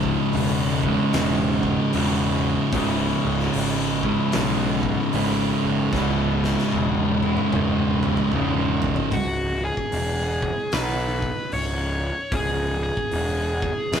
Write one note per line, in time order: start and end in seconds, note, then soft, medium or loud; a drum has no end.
0.00 0.15 C#1 loud
0.00 0.86 C#2 medium
0.00 0.81 G#2 medium
0.00 0.84 C#3 loud
0.00 0.83 G#3 loud
0.00 0.81 E4 loud
0.00 kick medium
0.33 0.96 E1 loud
0.33 open hi-hat medium
0.82 1.92 G#2 medium
0.82 1.94 C#3 medium
0.82 1.95 G#3 medium
0.82 1.96 E4 medium
0.82 kick medium
0.86 1.92 C#2 medium
1.13 1.75 E1 loud
1.13 2.73 C#2 medium
1.13 2.72 G#2 medium
1.13 2.76 C#3 medium
1.13 snare loud
1.13 open hi-hat medium
1.63 kick medium
1.92 2.55 E1 medium
1.92 2.72 C#2 medium
1.92 2.72 G#2 medium
1.92 2.74 C#3 medium
1.92 2.75 G#3 medium
1.92 open hi-hat medium
1.96 2.76 E4 medium
2.72 3.12 C#1 loud
2.72 4.07 C#2 medium
2.72 4.01 G#2 medium
2.72 4.05 C#3 loud
2.72 4.04 G#3 loud
2.72 kick loud
2.72 open hi-hat medium
2.76 4.03 E4 loud
3.25 3.47 C#1 loud
3.39 snare soft
3.53 4.16 G#1 loud
3.53 open hi-hat medium
4.03 5.12 G#2 medium
4.03 5.13 C#3 medium
4.03 5.14 G#3 medium
4.03 5.15 E4 loud
4.03 kick medium
4.07 5.11 C#2 medium
4.32 4.96 B1 loud
4.32 5.92 C#2 medium
4.32 5.92 G#2 medium
4.32 5.95 C#3 loud
4.32 snare loud
4.32 open hi-hat medium
4.83 kick medium
5.11 5.53 G#1 medium
5.11 5.91 C#2 medium
5.11 5.91 G#2 medium
5.11 5.92 C#3 medium
5.11 5.94 G#3 loud
5.11 5.94 E4 medium
5.11 open hi-hat medium
5.64 5.87 F#1 medium
5.91 6.54 C#1 loud
5.91 7.20 C#2 medium
5.91 7.20 G#2 medium
5.91 7.20 C#3 loud
5.91 7.21 G#3 loud
5.91 7.21 E4 loud
5.91 kick loud
5.91 snare medium
6.44 snare medium
6.59 snare medium
6.72 7.35 E1 medium
6.72 high tom medium
7.23 8.32 G#2 medium
7.23 8.32 C#3 medium
7.23 8.31 G#3 medium
7.23 8.31 E4 medium
7.23 high tom medium
7.27 8.31 C#2 medium
7.37 mid tom medium
7.53 8.15 E1 loud
7.53 9.11 C#2 medium
7.53 9.11 G#2 medium
7.53 9.12 C#3 medium
7.53 mid tom loud
8.03 mid tom medium
8.17 mid tom medium
8.32 8.95 E1 medium
8.32 9.11 C#2 medium
8.32 9.11 G#2 medium
8.32 9.12 C#3 medium
8.32 mid tom medium
8.36 9.12 G#3 medium
8.36 9.13 E4 medium
8.82 floor tom loud
8.96 floor tom medium
9.11 9.70 C#1 medium
9.11 9.64 F#4 medium
9.11 kick loud
9.11 open hi-hat medium
9.65 10.73 G#4 medium
9.77 kick medium
9.92 10.50 E1 medium
9.92 open hi-hat medium
10.42 kick medium
10.72 11.30 B1 medium
10.72 11.53 B4 loud
10.72 snare loud
10.72 open hi-hat medium
11.22 kick medium
11.52 12.10 C#1 medium
11.52 12.35 C#5 loud
11.52 open hi-hat medium
12.32 12.89 C#1 medium
12.32 12.82 G#4 medium
12.32 kick loud
12.32 open hi-hat medium
12.83 14.00 G#4 medium
12.97 kick medium
13.11 13.69 E1 medium
13.11 open hi-hat medium
13.62 kick medium
13.92 14.00 F#1 medium
13.92 snare loud
13.92 open hi-hat medium